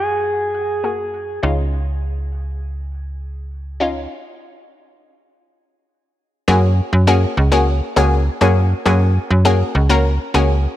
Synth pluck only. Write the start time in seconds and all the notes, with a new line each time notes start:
Already playing: A#3
0.83 A#3 F#4 G#4
1.43 C#4 D#4 F4
3.80 C#4 D#4 F4
6.48 A#3 C#4 F#4 G#4
7.07 A#3 C#4 F#4 G#4
7.52 A#3 C#4 F#4 G#4
7.96 A#3 C#4 F#4 G#4
8.41 A#3 C#4 F#4 G#4
8.85 A#3 C#4 F#4 G#4
9.45 A#3 C#4 F#4 G#4
9.89 A#3 C#4 F#4 A#4
10.34 A#3 C#4 F#4 G#4